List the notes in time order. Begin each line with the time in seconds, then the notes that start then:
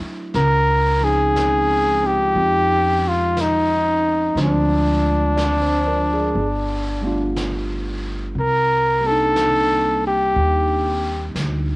Already playing: F#3 A3 C4 D4 E4
0.00 muted upright bass stroke
0.34 C#2 A#4, brush sweep, snare
1.00 F3 G#3 C4 C#4
1.04 D#4 G#4
1.36 brush sweep, snare, hi-hat pedal
2.02 C4 D#4 F4
2.06 G4
2.35 F2, brush sweep
3.08 F4
3.37 brush sweep, snare, hi-hat pedal
3.41 D#4
4.35 D2 F3 G#3 C4 D4 F4, brush sweep, snare
4.42 D4
5.36 D5, brush sweep, snare, hi-hat pedal
5.62 C5
5.87 A#4
6.13 G#4
6.35 G1, brush sweep
7.01 G3 A3 B3
7.06 D4 F4
7.36 brush sweep, snare, hi-hat pedal
8.35 C2, brush sweep
8.40 A#4
9.00 G3 A#3
9.05 C4 D4 A4
9.11 D#4
9.36 brush sweep, snare, hi-hat pedal
10.07 G4
10.36 D#2, brush sweep
11.35 D2, brush sweep, snare, hi-hat pedal